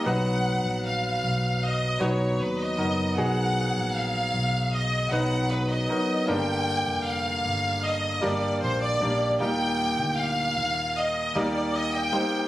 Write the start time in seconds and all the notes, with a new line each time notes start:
0.04 B1 F#3 B3 D#4 F#4 B4 F#5
0.64 A#1
0.85 F5
1.23 B1
1.63 D#5
2.00 B1 F#3 B3 D#4 F#4 B4 C#5
2.40 D#2 B4
2.60 D#5
2.77 F#1 F#3 B3 D#4 F#4 A#4
3.16 B1 F#3 B3 D#4 F#4 G#4 F#5
3.76 A#1
3.96 F5
4.34 B1
4.73 D#5
5.11 B1 F#3 B3 D#4 F#4 B4 F#5
5.51 B4
5.70 D#5
5.89 F#3 B3 D#4 F#4 A#4
6.27 G1 G2 D3 G3 A#3 D4 G4 A#4 G5
6.88 F1
7.06 F5
7.45 G1
7.84 D#5
8.21 G1 G3 A#3 D4 G4 A#4 D5
8.61 A#1 C5
8.81 D5
9.00 A#1 G3 A#3 D4 G4 A#4
9.40 D#2 A#2 G3 A#3 D#4 G4 A#4 G5
9.99 D2
10.17 F5
10.57 D#2
10.97 D#5
11.35 D#2 G3 A#3 D#4 G4 A#4 D5
11.75 D#5
11.94 G5
12.12 G3 A#3 D#4 G4 C5